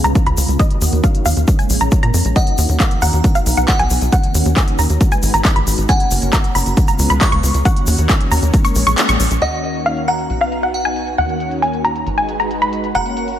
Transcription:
Already playing: C#3 G#3 B3 F4
0.04 C#2 A#5, closed hi-hat, shaker
0.15 kick, closed hi-hat, shaker
0.26 C#2 B5, closed hi-hat
0.37 C#2, open hi-hat, shaker
0.48 C#2, closed hi-hat, shaker
0.59 D#3 A#3 C#4 F#4 D#5, kick, closed hi-hat, shaker
0.71 closed hi-hat
0.82 D#2, open hi-hat, shaker
0.93 D#2, closed hi-hat, shaker
1.04 F5, kick, closed hi-hat, shaker
1.15 closed hi-hat
1.26 D#2 F5, open hi-hat, shaker
1.37 D#2, closed hi-hat, shaker
1.48 G#3 A#3, kick, closed hi-hat, shaker
1.59 G#5, closed hi-hat, shaker
1.70 A#1, open hi-hat, shaker
1.81 A#1 A#5, closed hi-hat, shaker
1.91 kick, closed hi-hat, shaker
2.03 A#2 A#5, closed hi-hat
2.14 F2, open hi-hat, shaker
2.25 A#1, closed hi-hat, shaker
2.36 D#3 F#4 D#5 F#5, kick, closed hi-hat, shaker
2.47 closed hi-hat
2.58 D#2, open hi-hat, shaker
2.69 D#2, closed hi-hat, shaker
2.80 F5, kick, clap, closed hi-hat, shaker
2.91 closed hi-hat
3.02 D#2 F#5 A#5, open hi-hat, shaker
3.13 D#2, closed hi-hat, shaker
3.24 B3 D#4, kick, closed hi-hat, shaker
3.35 F5, closed hi-hat, shaker
3.46 B1, open hi-hat, shaker
3.57 B1 F#5, closed hi-hat, shaker
3.68 F#5, kick, clap, closed hi-hat, shaker
3.79 B1 G#5, closed hi-hat
3.90 B1, open hi-hat, shaker
4.01 B1, closed hi-hat, shaker
4.12 D#3 A#3 C#4 F#4 F#5, kick, closed hi-hat, shaker
4.23 closed hi-hat
4.35 D#2, open hi-hat, shaker
4.46 D#2, closed hi-hat, shaker
4.57 G#5, kick, clap, closed hi-hat, shaker
4.68 closed hi-hat
4.79 D#2 A#5, open hi-hat, shaker
4.89 D#2, closed hi-hat, shaker
5.01 G#3 D#4 F#4 B4, kick, closed hi-hat, shaker
5.12 G#5, closed hi-hat, shaker
5.23 G#1, open hi-hat, shaker
5.34 G#1 A#5, closed hi-hat, shaker
5.45 kick, clap, closed hi-hat, shaker
5.56 G#1 B5, closed hi-hat
5.67 G#1, open hi-hat, shaker
5.78 G#1, closed hi-hat, shaker
5.89 A#3 C#4 F#5 G#5, kick, closed hi-hat, shaker
6.00 closed hi-hat
6.11 F#1, open hi-hat, shaker
6.22 F#1, closed hi-hat, shaker
6.33 A#5, kick, clap, closed hi-hat, shaker
6.44 closed hi-hat
6.55 F#1 A#5 B5, open hi-hat, shaker
6.66 F#1, closed hi-hat, shaker
6.77 C#3 G#3 B3 F4, kick, closed hi-hat, shaker
6.88 A#5, closed hi-hat, shaker
6.99 C#2, open hi-hat, shaker
7.10 C#2 B5, closed hi-hat, shaker
7.21 C#6, kick, clap, closed hi-hat, shaker
7.32 C#2 C#6, closed hi-hat
7.43 C#2, open hi-hat, shaker
7.54 C#2, closed hi-hat, shaker
7.65 D#3 A#3 C#4 F#4 F#5, kick, closed hi-hat, shaker
7.76 closed hi-hat
7.87 D#2, open hi-hat, shaker
7.98 D#2, closed hi-hat, shaker
8.09 G#5, kick, clap, closed hi-hat, shaker
8.21 closed hi-hat
8.31 D#2 A#5, open hi-hat, shaker
8.42 D#2, closed hi-hat, shaker
8.53 G#3, kick, closed hi-hat, shaker
8.64 C#6, closed hi-hat, shaker
8.75 A#1, open hi-hat, shaker
8.87 A#1 C#6, closed hi-hat, shaker
8.98 clap, closed hi-hat, shaker
9.09 A#1 C#6, closed hi-hat, shaker
9.20 A#1, open hi-hat, shaker
9.31 A#1, closed hi-hat, shaker
9.42 D#2 D#3 A#3 C#4 F#4 D#5 F#5, closed hi-hat
9.53 closed hi-hat
9.64 closed hi-hat
9.75 closed hi-hat
9.86 F5, closed hi-hat
9.97 closed hi-hat
10.08 F#5 A#5, closed hi-hat
10.19 closed hi-hat
10.30 B1 B3 D#4, closed hi-hat
10.41 F5, closed hi-hat
10.52 closed hi-hat
10.63 F#5, closed hi-hat
10.74 F#5, closed hi-hat
10.85 G#5, closed hi-hat
10.96 closed hi-hat
11.07 closed hi-hat
11.18 D#2 D#3 A#3 C#4 F#5, closed hi-hat
11.29 closed hi-hat
11.40 closed hi-hat
11.51 closed hi-hat
11.62 G#5, closed hi-hat
11.73 closed hi-hat
11.84 A#5, closed hi-hat
11.96 closed hi-hat
12.07 G#1 G#3 D#4 F#4 B4, closed hi-hat
12.18 G#5, closed hi-hat
12.29 closed hi-hat
12.40 A#5, closed hi-hat
12.51 closed hi-hat
12.62 B5, closed hi-hat
12.73 closed hi-hat
12.84 closed hi-hat
12.95 F#1 A#3 C#4 F#4 F#5 A#5, closed hi-hat
13.06 closed hi-hat
13.17 closed hi-hat
13.28 closed hi-hat

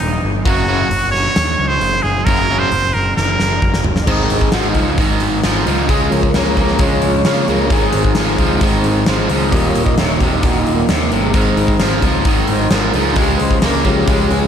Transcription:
Already playing: D#4
0.00 D#1, open hi-hat
0.23 G1
0.45 F#1 F#2 C#3 F#3 F#4, kick, open hi-hat
0.68 F#2 C#3 F#3
0.91 F#1, open hi-hat
1.11 C#5, snare
1.36 D#2, snare, open hi-hat
1.59 C#2
1.68 C5
1.81 F#1, open hi-hat
2.02 F#1 G#4
2.25 F#1 F#2 C#3 F#3 A#4, kick, open hi-hat
2.50 F#2 C#3 F#3
2.59 C5
2.72 F#1, open hi-hat
2.94 F#1 A#4
3.16 F#1 A#4, snare
3.40 F#1, snare
3.62 F#1, kick
3.74 snare
3.84 F#1, floor tom
3.96 snare
4.04 G#1 D#3 G#3 C4 D5, kick, crash
4.08 G#2 D#3 D#5
4.24 A#4
4.30 G#1, open hi-hat
4.39 G#4, kick
4.52 G#1 G#2 F3 F#4, snare, open hi-hat
4.69 D#4
4.74 C#2 G#2 F3, kick, open hi-hat
4.98 G#1 G#2 D#3, kick, open hi-hat
5.20 G#1, open hi-hat
5.43 G#1 G#2 F3, snare, open hi-hat
5.67 C#2 G#2 F3, open hi-hat
5.89 C#2 C#3 G#3 G#4, kick, open hi-hat
6.10 C#2 F3 G#3 C#4 A#4, open hi-hat
6.23 kick
6.34 C#2 C#3 A#3, snare, open hi-hat
6.57 C#2 C#3 A#3, kick, open hi-hat
6.68 snare
6.79 C#2 C#3 G#3 C#5, kick, open hi-hat
7.02 C#2, open hi-hat
7.25 C#3 A#3 C#5, snare, open hi-hat
7.48 C#2 C#3 A#3 A#4, open hi-hat
7.70 G#1 G#2 D#3 G#4, kick, open hi-hat
7.92 G#1 D#3 G#3 C4, open hi-hat
8.04 kick
8.15 G#1 G#2 F3, snare, open hi-hat
8.38 C#2 G#2 F3, kick, open hi-hat
8.61 G#1 G#2 D#3, kick, open hi-hat
8.84 G#1, open hi-hat
9.06 G#1 G#2 F3, snare, open hi-hat
9.29 C#2 G#2 F3, open hi-hat
9.52 D#1 D#2 A#2 D#3 G3 A#3 D5, kick, open hi-hat
9.56 D#5
9.69 C#5
9.75 D#1, open hi-hat
9.85 D#5, kick
9.98 D#1 D#2 C3 C#5, snare, open hi-hat
10.16 F#4
10.20 D#1 D#2 C3, kick, open hi-hat
10.31 D#4
10.43 D#1 D#2 A#2 F#4, kick, open hi-hat
10.59 D#4
10.67 D#1, open hi-hat
10.76 A#3
10.89 D#2 C3, snare, open hi-hat
11.06 A#3
11.12 G1 D#2 C3, open hi-hat
11.22 G#3
11.34 G#1 G#2 D#3 G#3 C4, kick, open hi-hat
11.57 G#1, open hi-hat
11.68 kick
11.80 G#1 G#2 F3, snare, open hi-hat
12.02 C#2 G#2 D#3 F3 G#3 C4, kick, open hi-hat
12.25 G#1 G#2 D#3, kick, open hi-hat
12.48 G#1, open hi-hat
12.52 C5
12.71 G#1 G#2 F3 A#4, snare, open hi-hat
12.94 C#2 G#2 F3 G#4, open hi-hat
13.16 C#2 C#3 G#3 G4, kick, open hi-hat
13.37 C#2 B4, open hi-hat
13.42 C5
13.51 kick
13.62 C#2 C#3 A#3 A#4, snare, open hi-hat
13.85 C#2 C#3 F3 G#3 A#3 C#4 G4, kick, open hi-hat
14.08 C#2 C#3 G#3 G4, kick, open hi-hat
14.31 C#2 G#4, open hi-hat

